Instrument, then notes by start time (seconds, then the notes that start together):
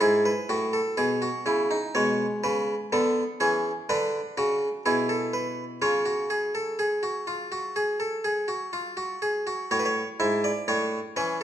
harpsichord
0.01 G#2 E4 G#4
0.26 B4
0.49 A2 F#4
0.73 A4
0.97 B2 G#4
1.22 F#4
1.46 C#3 E4
1.71 D#4
1.95 B2 G#3 C#5
2.44 C#3 B4
2.92 D3 B3 A4
3.40 E3 C#4 G#4
3.89 D3 D4 B4
4.37 C#3 F#4
4.86 B2 E4 G#4
5.09 A4
5.33 B4
5.82 C#3 F4 C#5
6.06 F#4
6.30 G#4
6.55 A4
6.79 G#4
7.03 F#4
7.27 F4
7.52 F#4
7.76 G#4
8.00 A4
8.24 G#4
8.48 F#4
8.73 F4
8.97 F#4
9.22 G#4
9.47 F#4
9.71 A2 F#4 C#5
9.79 B4
9.85 C#5
10.20 G#2 E4 E5
10.44 D5
10.68 A2 D4 C#5
11.16 E3 C#4 B4